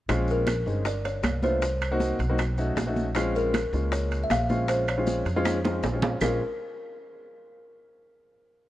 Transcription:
0.08 0.62 A#1 medium
0.08 0.49 G#3 medium
0.08 0.49 C4 medium
0.08 0.49 C#4 medium
0.08 0.49 F4 medium
0.08 high bongo medium
0.08 high conga soft
0.08 high timbale medium
0.08 claves medium
0.08 maracas medium
0.28 0.83 A#4 medium
0.28 high conga soft
0.28 maracas soft
0.47 high bongo medium
0.47 high conga medium
0.47 high timbale medium
0.47 low timbale medium
0.47 claves medium
0.47 maracas medium
0.66 1.20 G1 medium
0.66 0.86 G#3 medium
0.66 0.86 C4 medium
0.66 0.86 C#4 medium
0.66 0.86 D#4 medium
0.66 maracas soft
0.85 1.06 D5 medium
0.85 high bongo medium
0.85 high conga soft
0.85 high timbale medium
0.85 maracas medium
1.05 1.41 C#5 medium
1.05 high conga soft
1.05 high timbale medium
1.05 maracas soft
1.23 2.13 C2 medium
1.23 high bongo medium
1.23 low bongo medium
1.23 high conga medium
1.23 high timbale medium
1.23 low timbale medium
1.23 claves medium
1.23 maracas medium
1.43 1.62 A3 medium
1.43 1.62 B3 medium
1.43 1.62 D4 medium
1.43 1.62 F4 medium
1.43 1.79 C5 medium
1.43 high conga medium
1.43 maracas soft
1.62 high bongo medium
1.62 high conga soft
1.62 high timbale medium
1.62 maracas medium
1.81 high bongo soft
1.81 high conga soft
1.81 high timbale loud
1.81 claves medium
1.81 maracas soft
1.91 2.18 A#3 medium
1.91 2.18 C4 medium
1.91 2.18 D#4 medium
1.91 2.18 F#4 loud
2.00 high bongo medium
2.00 high conga medium
2.00 low timbale medium
2.00 maracas medium
2.19 2.73 B1 medium
2.19 high bongo soft
2.19 high conga soft
2.19 high timbale medium
2.19 maracas soft
2.30 2.39 A#3 medium
2.30 2.39 C4 medium
2.30 2.39 D#4 medium
2.30 2.39 F#4 medium
2.38 high bongo medium
2.38 high conga soft
2.38 high timbale medium
2.38 claves medium
2.38 maracas medium
2.58 2.78 A3 medium
2.58 2.78 C#4 medium
2.58 2.78 D#4 medium
2.58 2.78 F#4 medium
2.58 high conga soft
2.58 maracas soft
2.76 3.67 A#1 medium
2.76 high bongo medium
2.76 low bongo medium
2.76 high conga medium
2.76 high timbale medium
2.76 low timbale medium
2.76 maracas medium
2.87 3.07 A3 medium
2.87 3.07 C#4 medium
2.87 3.07 D#4 medium
2.87 3.07 F#4 medium
2.96 high bongo soft
2.96 high conga medium
2.96 maracas soft
3.15 3.56 G#3 loud
3.15 3.56 C4 medium
3.15 3.56 C#4 medium
3.15 3.56 F4 loud
3.15 high bongo medium
3.15 high conga soft
3.15 high timbale medium
3.15 claves medium
3.15 maracas medium
3.35 3.71 A#4 medium
3.35 high conga soft
3.35 maracas soft
3.54 high bongo medium
3.54 high conga loud
3.54 high timbale loud
3.54 low timbale medium
3.54 claves medium
3.54 maracas medium
3.73 4.26 C#2 medium
3.73 4.27 G#3 medium
3.73 4.27 A#3 medium
3.73 4.27 C#4 medium
3.73 4.27 F4 medium
3.73 maracas soft
3.92 4.24 C#5 medium
3.92 high bongo medium
3.92 high conga soft
3.92 high timbale medium
3.92 maracas medium
4.11 high conga soft
4.11 high timbale medium
4.11 maracas soft
4.24 4.30 E5 medium
4.30 5.20 A#1 medium
4.30 4.70 F5 loud
4.30 high bongo medium
4.30 low bongo medium
4.30 high conga medium
4.30 high timbale medium
4.30 low timbale medium
4.30 claves medium
4.30 maracas medium
4.49 4.83 G#3 medium
4.49 4.83 C4 medium
4.49 4.83 C#4 medium
4.49 4.83 F4 medium
4.49 high conga medium
4.49 maracas soft
4.68 4.89 C5 medium
4.68 high bongo medium
4.68 high conga soft
4.68 high timbale medium
4.68 maracas medium
4.88 5.99 C#5 medium
4.88 high bongo soft
4.88 high conga soft
4.88 high timbale loud
4.88 claves medium
4.88 maracas soft
4.98 5.24 G#3 medium
4.98 5.24 C4 medium
4.98 5.24 C#4 medium
4.98 5.24 F4 medium
5.07 high bongo medium
5.07 high conga medium
5.07 low timbale medium
5.07 maracas medium
5.25 5.79 F2 medium
5.25 high bongo soft
5.25 high conga soft
5.25 high timbale medium
5.25 maracas soft
5.36 5.56 G#3 loud
5.36 5.56 C4 medium
5.36 5.56 C#4 medium
5.36 5.56 F4 loud
5.45 high bongo medium
5.45 high conga medium
5.45 high timbale medium
5.45 claves medium
5.45 maracas medium
5.64 5.85 G#3 medium
5.64 5.85 C4 medium
5.64 5.85 C#4 medium
5.64 5.85 F4 medium
5.64 high conga medium
5.64 high timbale medium
5.64 maracas soft
5.83 6.17 A#1 medium
5.83 high bongo medium
5.83 low bongo medium
5.83 low timbale medium
5.83 maracas medium
5.93 6.13 G#3 medium
5.93 6.13 C4 medium
5.93 6.13 C#4 medium
5.93 6.13 F4 medium
6.02 high bongo soft
6.02 low conga loud
6.02 low timbale loud
6.02 maracas soft
6.21 6.39 A#1 medium
6.21 6.40 G#3 medium
6.21 6.39 C4 medium
6.21 6.40 C#4 medium
6.21 6.39 F4 medium
6.21 6.39 A#4 medium
6.21 low bongo medium
6.21 low conga medium
6.21 low timbale loud
6.21 claves medium
6.21 maracas medium

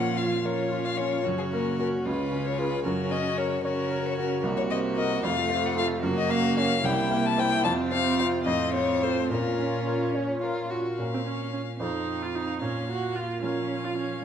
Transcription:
0.00 1.20 A#2 soft
0.00 0.44 F3 soft
0.00 0.34 A#3 soft
0.00 0.45 C#4 soft
0.00 0.44 F4 soft
0.00 0.18 F#5 medium
0.17 0.61 F4 soft
0.17 0.47 F5 medium
0.44 1.26 F3 soft
0.44 1.23 C#4 soft
0.44 1.26 F4 soft
0.44 0.88 A#4 soft
0.44 0.87 C#5 medium
0.71 1.14 F4 soft
0.85 0.99 F5 medium
0.97 1.25 C#4 soft
0.97 1.24 C#5 medium
1.25 2.03 F#2 soft
1.25 2.04 C#3 soft
1.25 2.03 C#4 soft
1.25 2.07 F#4 soft
1.38 1.44 G#4 soft
1.52 1.95 A#3 soft
1.52 1.78 A#4 soft
1.79 2.03 C#4 soft
1.79 2.03 F#4 soft
1.79 1.87 A#4 medium
2.04 2.82 C#2 soft
2.04 2.82 C#3 soft
2.04 2.83 C#4 soft
2.04 2.84 F4 soft
2.04 2.48 B4 medium
2.32 2.74 C#4 soft
2.46 2.59 C#5 medium
2.58 2.82 F4 soft
2.58 2.82 G#4 soft
2.58 2.84 B4 medium
2.84 4.40 F#2 soft
2.84 3.62 C#3 soft
2.84 3.62 C#4 medium
2.84 3.63 F#4 soft
2.84 3.13 A#4 medium
3.11 3.53 C#4 soft
3.11 3.39 D#5 medium
3.37 3.80 A#4 soft
3.37 3.63 C#5 medium
3.64 4.45 C#3 soft
3.64 4.46 C#4 soft
3.64 4.42 F#4 medium
3.64 4.07 A#4 medium
3.64 4.06 C#5 soft
3.91 4.33 A#4 soft
4.06 4.17 C#5 medium
4.18 4.44 F#4 soft
4.18 4.43 A#4 medium
4.43 5.21 C2 medium
4.43 5.23 C3 soft
4.43 5.25 A#3 medium
4.43 5.25 F#4 medium
4.57 4.62 C#5 medium
4.70 5.13 C4 soft
4.70 4.78 D#5 medium
4.96 5.21 F#4 soft
4.96 5.21 A#4 soft
4.96 5.22 D#5 medium
5.23 6.01 F2 medium
5.23 6.05 C3 medium
5.23 6.03 A3 medium
5.23 6.02 F4 medium
5.23 5.67 F5 medium
5.50 5.92 C4 soft
5.66 5.77 F#5 medium
5.76 6.00 F4 soft
5.76 6.00 A4 soft
5.76 5.86 F5 medium
6.02 6.81 F#2 medium
6.02 6.85 C#3 medium
6.02 6.82 A#3 medium
6.02 6.82 F#4 medium
6.18 6.32 D#5 medium
6.29 6.73 A#3 soft
6.29 6.57 F5 medium
6.57 6.81 C#4 soft
6.57 6.81 C#5 soft
6.57 6.87 F5 medium
6.83 7.62 C2 medium
6.83 7.64 C3 medium
6.83 7.66 A#3 medium
6.83 7.65 E4 medium
6.83 7.27 G5 medium
7.10 7.53 A#3 soft
7.26 7.41 A5 medium
7.37 7.61 E4 soft
7.37 7.62 C5 soft
7.37 7.64 G5 medium
7.63 8.44 F2 medium
7.63 8.48 C3 medium
7.63 8.45 C4 medium
7.63 8.44 F4 medium
7.63 7.72 A5 medium
7.92 8.35 C4 soft
7.92 8.18 F5 medium
8.19 8.44 F4 soft
8.19 8.44 C5 soft
8.19 8.27 F5 medium
8.45 9.28 F2 medium
8.45 9.29 A2 soft
8.45 9.32 C4 medium
8.45 9.28 F4 medium
8.45 8.73 D#5 medium
8.73 9.19 C4 soft
8.73 9.04 C#5 medium
9.02 9.28 F4 soft
9.02 9.28 A4 soft
9.02 9.30 C5 medium
9.30 10.75 A#2 soft
9.30 10.95 A#2 soft
9.30 10.78 C#4 medium
9.30 10.07 F4 soft
9.30 10.13 A#4 medium
9.59 10.03 C#4 soft
9.87 10.32 A#4 soft
10.13 10.40 C#4 medium
10.13 10.60 C#5 soft
10.41 10.72 F4 medium
10.41 10.88 A#4 soft
10.70 10.98 F4 soft
10.70 10.99 F#4 soft
10.98 11.78 A#2 soft
10.98 11.76 C#4 soft
10.98 11.77 F4 soft
10.98 11.77 A#4 soft
10.98 11.76 F5 soft
11.14 11.19 C4 soft
11.26 11.53 C#4 soft
11.53 11.61 C#4 soft
11.80 12.59 F2 soft
11.80 12.59 C4 soft
11.80 12.57 C4 soft
11.80 12.24 D#4 soft
11.80 12.58 F4 soft
11.80 12.58 A4 soft
11.80 12.60 F5 soft
12.22 12.36 F4 soft
12.35 12.61 D#4 soft
12.61 13.40 A#2 soft
12.61 13.44 A#3 soft
12.61 12.88 C#4 soft
12.61 13.41 F5 soft
12.89 13.17 F#4 soft
13.15 13.42 F4 soft
13.42 14.23 F3 soft
13.42 13.86 C#4 soft
13.42 14.20 C#4 soft
13.42 14.20 F4 soft
13.42 14.20 A#4 soft
13.42 14.25 F5 soft
13.84 13.97 F4 soft
13.97 14.23 C#4 medium

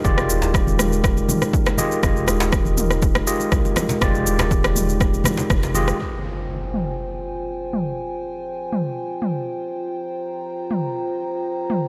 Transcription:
0.00 5.96 G#3 medium
0.00 5.96 D#4 medium
0.00 5.99 A#4 medium
0.04 0.31 F1 loud
0.04 1.75 G#3 medium
0.04 1.75 F4 medium
0.04 1.75 G4 medium
0.04 1.75 D5 loud
0.04 kick loud
0.04 muted conga medium
0.04 high conga medium
0.04 shaker medium
0.18 cross-stick medium
0.18 shaker soft
0.29 1.22 D#1 loud
0.29 muted conga soft
0.29 djembe tone medium
0.29 shaker medium
0.42 djembe slap medium
0.42 djembe tone medium
0.42 shaker soft
0.54 kick loud
0.54 cross-stick medium
0.54 muted conga medium
0.54 shaker soft
0.67 high conga medium
0.67 shaker soft
0.79 cross-stick medium
0.79 mid tom medium
0.79 muted conga soft
0.79 shaker medium
0.93 shaker soft
1.04 kick loud
1.04 cross-stick medium
1.04 shaker medium
1.17 muted conga soft
1.17 shaker soft
1.29 mid tom medium
1.29 high conga loud
1.29 low conga medium
1.29 shaker medium
1.42 cross-stick medium
1.42 muted conga soft
1.42 low conga medium
1.42 shaker soft
1.53 kick loud
1.53 shaker soft
1.66 cross-stick medium
1.66 muted conga medium
1.66 djembe slap medium
1.66 shaker soft
1.77 2.00 G#3 medium
1.77 2.00 F4 medium
1.77 2.00 G4 medium
1.77 2.00 D#5 loud
1.77 high conga loud
1.77 low conga medium
1.77 shaker medium
1.92 shaker soft
2.03 2.29 F1 loud
2.03 3.24 G#3 medium
2.03 3.24 F4 medium
2.03 3.24 G4 medium
2.03 3.24 D#5 medium
2.03 kick loud
2.03 cross-stick medium
2.03 muted conga medium
2.03 high conga medium
2.03 shaker medium
2.16 shaker soft
2.26 3.20 D#1 loud
2.26 cross-stick medium
2.26 muted conga soft
2.26 djembe tone medium
2.26 shaker medium
2.40 djembe slap loud
2.40 djembe tone medium
2.40 shaker soft
2.52 kick loud
2.52 cross-stick medium
2.52 muted conga medium
2.52 shaker soft
2.65 high conga medium
2.65 shaker soft
2.77 mid tom medium
2.77 muted conga soft
2.77 shaker medium
2.91 cross-stick medium
2.91 shaker soft
3.02 kick loud
3.02 shaker medium
3.15 cross-stick medium
3.15 muted conga soft
3.15 shaker soft
3.27 3.99 G#3 medium
3.27 3.99 F4 medium
3.27 3.99 G4 medium
3.27 3.99 D#5 medium
3.27 shaker medium
3.40 muted conga soft
3.40 shaker soft
3.52 3.60 C2 medium
3.52 kick loud
3.52 cross-stick medium
3.52 djembe tone medium
3.52 shaker soft
3.65 muted conga medium
3.65 shaker soft
3.76 cross-stick medium
3.76 mid tom medium
3.76 djembe slap medium
3.76 high conga medium
3.76 djembe tone medium
3.76 shaker medium
3.89 djembe slap medium
3.89 low conga loud
3.89 shaker soft
4.01 4.28 F1 loud
4.01 5.72 G#3 medium
4.01 5.72 F4 medium
4.01 5.72 G4 medium
4.01 5.72 D5 loud
4.01 kick loud
4.01 cross-stick loud
4.01 muted conga medium
4.01 high conga medium
4.01 shaker soft
4.15 shaker soft
4.26 5.19 D#1 loud
4.26 muted conga soft
4.26 djembe tone medium
4.26 shaker medium
4.39 cross-stick medium
4.39 djembe slap loud
4.39 djembe tone medium
4.39 low conga medium
4.39 shaker soft
4.51 kick loud
4.51 muted conga medium
4.51 shaker medium
4.63 cross-stick loud
4.63 high conga medium
4.63 shaker soft
4.75 mid tom medium
4.75 muted conga soft
4.75 shaker medium
4.89 shaker soft
5.01 kick loud
5.01 cross-stick medium
5.01 shaker medium
5.14 muted conga medium
5.14 shaker soft
5.24 cross-stick medium
5.24 mid tom medium
5.24 high conga loud
5.24 djembe tone medium
5.24 low conga loud
5.24 shaker medium
5.37 djembe slap medium
5.37 muted conga soft
5.37 low conga medium
5.37 shaker soft
5.50 5.93 F1 loud
5.50 kick loud
5.50 cross-stick medium
5.50 shaker soft
5.63 muted conga medium
5.63 djembe slap medium
5.63 shaker soft
5.74 5.97 G#3 medium
5.74 5.97 F4 medium
5.74 5.97 G4 medium
5.74 5.97 D#5 loud
5.74 high conga loud
5.74 low conga medium
5.74 shaker medium
5.88 cross-stick medium
5.88 shaker soft
6.00 11.88 F4 medium
6.00 11.88 C5 medium
6.00 11.88 G5 medium
6.00 9.95 G#5 medium
6.00 impact medium
6.74 mid tom medium
7.73 mid tom medium
8.72 mid tom medium
9.22 mid tom medium
9.96 11.88 A#5 medium
10.71 mid tom medium
11.70 mid tom medium

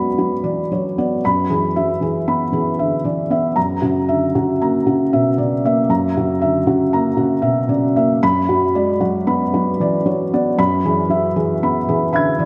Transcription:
0.00 1.17 F#2 medium
0.00 0.19 F#3 soft
0.00 1.24 G#3 soft
0.00 0.32 B3 soft
0.00 0.18 F#4 soft
0.00 0.44 D5 medium
0.00 1.24 B5 medium
0.18 0.60 F#3 soft
0.18 0.59 F#4 soft
0.43 0.69 E3 soft
0.43 0.85 D5 soft
0.71 1.12 F#3 soft
0.71 0.97 C#5 soft
0.98 1.23 B3 soft
0.98 1.23 D5 soft
1.25 3.54 F#2 medium
1.25 1.65 B5 medium
1.50 1.91 E3 soft
1.50 1.91 G#4 medium
1.76 2.02 F#3 soft
1.76 2.17 E5 medium
2.01 2.42 E3 soft
2.01 2.43 G#4 medium
2.27 2.68 B3 soft
2.27 2.69 B5 medium
2.52 2.94 E3 soft
2.52 2.94 G#4 medium
2.79 3.05 D3 soft
2.79 3.20 E5 soft
3.04 3.46 E3 soft
3.04 3.30 D5 soft
3.30 3.56 B3 soft
3.30 3.56 E5 medium
3.56 5.86 F#2 medium
3.56 3.97 A#5 medium
3.82 4.24 C#3 soft
3.82 4.24 F#4 soft
4.09 4.34 D3 soft
4.09 4.50 E5 medium
4.35 4.76 C#3 medium
4.35 4.76 F#4 medium
4.61 5.02 A#3 soft
4.61 5.02 A#5 medium
4.86 5.27 C#3 soft
4.86 5.28 F#4 medium
5.13 5.38 B2 soft
5.13 5.54 E5 medium
5.38 5.79 C#3 medium
5.38 5.64 D5 medium
5.65 6.06 A#3 medium
5.65 6.06 E5 medium
5.89 8.17 F#2 medium
5.89 6.31 A#5 medium
6.17 6.57 C#3 medium
6.17 6.57 F#4 medium
6.42 6.68 D3 soft
6.42 6.82 E5 medium
6.67 7.08 C#3 medium
6.67 7.08 F#4 medium
6.93 7.34 A#3 medium
6.93 7.34 A#5 medium
7.17 7.58 C#3 medium
7.17 7.58 F#4 medium
7.42 7.69 B2 medium
7.42 7.84 E5 medium
7.69 8.11 C#3 medium
7.69 7.95 D5 medium
7.96 8.22 A#3 medium
7.96 8.22 E5 medium
8.23 10.54 F#2 medium
8.23 8.64 B5 medium
8.49 8.90 F#3 medium
8.49 8.90 F#4 medium
8.75 9.01 G#3 soft
8.75 9.16 D5 medium
9.00 9.41 F#3 medium
9.00 9.42 F#4 medium
9.27 9.68 B3 medium
9.27 9.68 B5 medium
9.54 9.95 F#3 medium
9.54 9.95 F#4 medium
9.80 10.05 E3 medium
9.80 10.22 D5 medium
10.06 10.47 F#3 medium
10.06 10.32 C#5 medium
10.33 10.59 B3 medium
10.33 10.59 D5 medium
10.58 12.45 F#2 medium
10.58 11.00 B5 medium
10.85 11.26 E3 medium
10.85 11.26 G#4 medium
11.09 11.36 F#3 medium
11.09 11.52 E5 medium
11.36 11.78 E3 medium
11.36 11.78 G#4 medium
11.63 12.04 B3 medium
11.63 12.04 B5 medium
11.89 12.30 E3 medium
11.89 12.30 G#4 medium
12.13 12.40 D3 soft
12.13 12.45 E5 medium
12.13 12.45 B5 medium
12.13 12.45 G#6 soft
12.39 12.45 E3 medium
12.39 12.45 D5 medium

